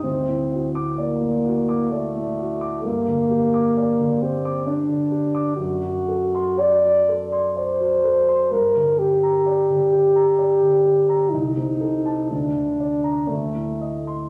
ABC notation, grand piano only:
X:1
M:3/4
L:1/16
Q:1/4=64
K:Gm
V:1 name="Grand piano"
D,, A,, ^F d' d A,, F d' d A,, F d' | G,, D, G d' d D, G d' d D, G d' | ^F,, ^F, A c' d F, A c' d F, A c' | G,, D, G b d D, G b d D, G b |
C,, C, A a D,, D, d b D,, A,, e c' |]